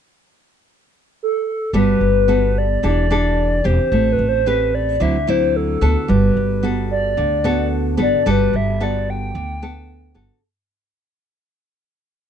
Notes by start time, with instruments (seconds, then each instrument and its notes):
1.23 soft synth lead A4
1.73 upright bass G1, nylon-string guitar G3 B3 F#4 A4, soft synth lead B4
2.01 upright bass G1
2.28 nylon-string guitar B3 F#4 A4
2.58 soft synth lead D5
2.83 upright bass E1, nylon-string guitar E3 D4 G4 A4, soft synth lead D5
3.10 nylon-string guitar D4 G4 A4
3.64 upright bass E1, nylon-string guitar C4 G4, soft synth lead C5
3.92 upright bass A1, nylon-string guitar A3
4.12 soft synth lead B4
4.19 upright bass A1
4.29 soft synth lead C5
4.46 nylon-string guitar C4 G4 B4, soft synth lead B4
4.74 soft synth lead D5
5.00 upright bass D2, nylon-string guitar D3 F#3 C4 E4, soft synth lead E5
5.27 nylon-string guitar F#3 C4 E4, soft synth lead C5
5.56 soft synth lead A4
5.81 upright bass D2, nylon-string guitar B3 F#4 A4
6.08 upright bass G1, nylon-string guitar G3, soft synth lead B4
6.37 upright bass G1
6.63 nylon-string guitar B3 F#4 A4
6.91 soft synth lead D5
7.17 upright bass D2, nylon-string guitar D3
7.44 nylon-string guitar B3 F#4 A4
7.97 upright bass G1, nylon-string guitar B3 F#4 A4
8.02 soft synth lead D5
8.26 upright bass G1, nylon-string guitar G3 B3 F#4 A4
8.30 soft synth lead B4
8.53 upright bass G1, soft synth lead E5
8.80 nylon-string guitar B3 F#4 A4, soft synth lead D5
9.10 soft synth lead G5
9.35 upright bass D2, nylon-string guitar D3
9.62 nylon-string guitar B3 A4
10.14 upright bass G1, nylon-string guitar B3 F#4 A4